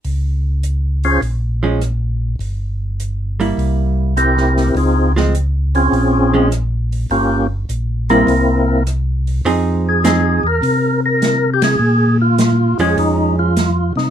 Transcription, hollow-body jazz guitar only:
X:1
M:4/4
L:1/8
Q:"Swing" 1/4=102
K:Fm
V:1 name="Hollow-body jazz guitar"
z4 z [F,A,D] z2 | z3 [G,B,=E]3 z2 | z [F,A,C] z3 [F,A,D] z2 | z3 [G,B,=E] z4 |
[F,CEA]2 [F,CEA] z4 z | z3 [F,A,D]3 z2 |]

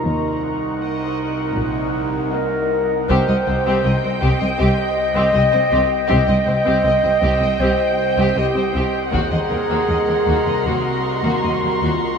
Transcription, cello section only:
X:1
M:4/4
L:1/16
Q:1/4=79
K:Cphr
V:1 name="Cello section" clef=bass
E,,3 z4 z B,,3 z4 z | C,, C,, C,, C,, C,, C,, C,, C,, C,, z2 C,, C,, C,, C,, z | C,, C,, C,, C,, C,, C,, C,, C,, C,, z2 C,, C,, C,, C,, z | E,, E,, E,, E,, E,, E,, E,, E,, E,, z2 E,, E,, E,, E,, z |]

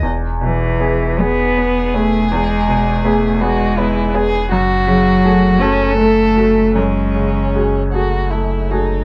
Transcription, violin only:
X:1
M:6/8
L:1/8
Q:3/8=53
K:F#dor
V:1 name="Violin"
z3 G3- | G3 F E G | F3 A3 | C3 F E D |]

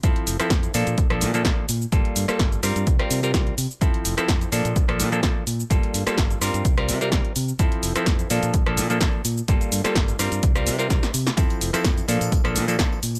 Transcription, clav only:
X:1
M:4/4
L:1/16
Q:"Swing 16ths" 1/4=127
K:F
V:1 name="Clav"
[F,CEA]3 [F,CEA]3 [F,B,DA]3 [F,B,DA]2 [F,B,DA] [B,DA]2 z2 | [G,B,FA]3 [G,B,FA]3 [G,CFB]3 [G,CFB]2 [G,CFB] B2 z2 | [F,CEA]3 [F,CEA]3 [F,B,DA]3 [F,B,DA]2 [F,B,DA] [F,B,D]2 z2 | [G,B,FA]3 [G,B,FA]3 [G,CFB]3 [G,CFB]2 [G,CFB] C2 z2 |
[F,CEA]3 [F,CEA]3 [F,B,DA]3 [F,B,DA]2 [F,B,DA] [F,B,]2 z2 | [G,B,FA]3 [G,B,FA]3 [G,CFB]3 [G,CFB]2 [G,CFB] [G,CFB]2 z2 | [F,CEA]3 [F,CEA]3 [F,B,DA]3 [F,B,DA]2 [F,B,DA] [F,B,DA]2 z2 |]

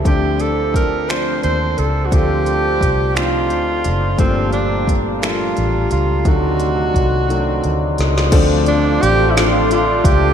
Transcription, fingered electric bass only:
X:1
M:6/8
L:1/8
Q:3/8=58
K:Dphr
V:1 name="Fingered electric bass" clef=bass
D,,4 E,, ^C,, | D,,2 C,,2 D,, ^F,,, | G,,,4 A,,, ^C,, | D,,2 C,,2 D,, ^C,, |
D,,2 A,,,3 ^C,, |]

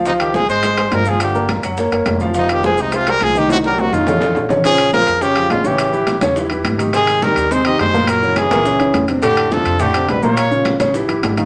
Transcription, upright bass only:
X:1
M:4/4
L:1/8
Q:1/4=210
K:Fm
V:1 name="Upright bass" clef=bass
D,,3 A,,,3 G,,,2- | G,,,3 _G,,,2 G,,, F,,,2- | F,,,3 C,,3 C,,2- | C,,3 F,,3 B,,,2- |
B,,,3 F,,3 =A,,,2- | =A,,,3 =E,,3 _A,,,2- | A,,,3 E,,3 _G,,2- | _G,,3 D,,3 F,,2- |
F,,3 F,,3 B,,,2- | B,,,3 =A,,,2 A,,, _A,,,2 |]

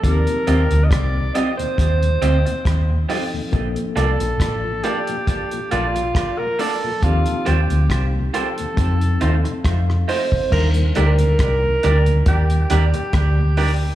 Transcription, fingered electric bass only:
X:1
M:4/4
L:1/16
Q:"Swing 16ths" 1/4=69
K:Eblyd
V:1 name="Fingered electric bass" clef=bass
E,, z E,, D,, C,,2 z2 E,,2 D,, z E,,2 z2 | B,,, z C,, B,,, A,,,2 z4 B,,,2 z4 | E,, z E,, D,, C,,2 z2 F,,2 E,, z F,,2 z2 | E,,2 D,,2 C,,2 D,,2 E,,2 E,, z D,,4 |]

